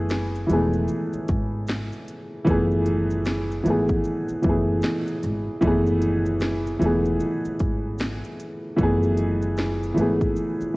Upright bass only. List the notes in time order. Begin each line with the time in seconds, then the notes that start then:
Already playing: F#1
0.50 E1
1.14 muted upright bass stroke
1.29 G#1
2.47 F#1
3.66 G#1
4.30 muted upright bass stroke
4.44 F#1
5.24 G#1
5.62 F#1
6.81 E1
7.45 muted upright bass stroke
7.60 G#1
8.79 F#1
9.97 G#1
10.61 muted upright bass stroke